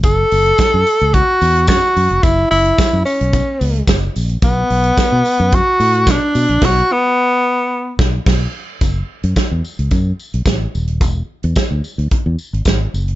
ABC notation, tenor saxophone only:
X:1
M:4/4
L:1/8
Q:1/4=109
K:F#m
V:1 name="Tenor saxophone"
A4 F2 F2 | E E2 C3 z2 | B,4 F2 D2 | F B,4 z3 |
z8 | z8 |]